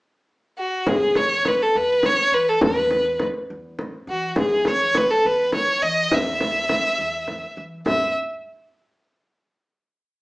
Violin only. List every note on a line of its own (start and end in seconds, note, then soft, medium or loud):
0.58 0.90 F#4 medium
0.88 1.18 G#4 medium
1.17 1.49 C#5 medium
1.47 1.64 B4 medium
1.62 1.78 A4 medium
1.77 2.07 B4 medium
2.06 2.36 C#5 medium
2.34 2.50 B4 medium
2.49 2.63 A4 medium
2.63 3.24 B4 medium
4.10 4.36 F#4 medium
4.38 4.69 G#4 medium
4.68 4.99 C#5 medium
4.97 5.12 B4 medium
5.10 5.28 A4 medium
5.26 5.54 B4 medium
5.55 5.84 C#5 medium
5.83 6.16 D#5 medium
6.14 7.58 E5 medium
7.87 8.14 E5 medium